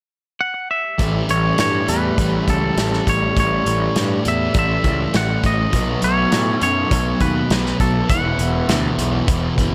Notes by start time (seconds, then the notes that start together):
0.41 F#5
0.71 E5
0.98 A1 A2 E3 G3 A3 C#4 G4, kick, closed hi-hat
1.28 A1 E3 A3 C#5, closed hi-hat
1.57 G2 A2 E3 A3 C#5, snare, closed hi-hat
1.87 E2 E3 A3 B4, closed hi-hat
2.17 A1 A2 E3 A3, kick, closed hi-hat
2.46 C#2 E3 A3 A4, kick, closed hi-hat
2.76 A1 A2 E3 A3, snare, closed hi-hat
2.93 snare
3.05 A1 E3 A3, kick, closed hi-hat
3.09 C#5
3.35 A1 A2 E3 A3, kick, closed hi-hat
3.40 C#5
3.65 A1 E3 A3, closed hi-hat
3.95 G2 A2 E3 A3, snare, closed hi-hat
4.24 E2 E3 A3, closed hi-hat
4.28 E5
4.54 A1 A2 E3 A3, kick, closed hi-hat
4.59 E5
4.84 C#2 E3 A3, kick, closed hi-hat
5.14 A1 A2 E3 A3 F#5, snare, closed hi-hat
5.43 A1 E3 A3 D#5, kick, closed hi-hat
5.72 B1 B2 F#3 A3 B3 D#4 F#4, kick, closed hi-hat
6.02 B1 F#3 B3 C#5, closed hi-hat
6.31 A2 B2 F#3 B3, snare, closed hi-hat
6.61 F#2 F#3 B3 C#5, closed hi-hat
6.90 B1 B2 F#3 B3, kick, closed hi-hat
7.20 D#2 F#3 B3 B4, kick, closed hi-hat
7.50 B1 B2 F#3 B3, snare, closed hi-hat
7.66 snare
7.79 B1 F#3 B3 A4, kick, closed hi-hat
8.08 E1 E2 B2 E3 B3 E4 F#4 F#5, kick, closed hi-hat
8.38 E1 B2 E3, closed hi-hat
8.68 D2 E2 B2 E3, snare, closed hi-hat
8.97 B1 B2 E3, closed hi-hat
9.27 E1 E2 B2 E3, kick, closed hi-hat
9.56 F#1 B2 E3, kick, closed hi-hat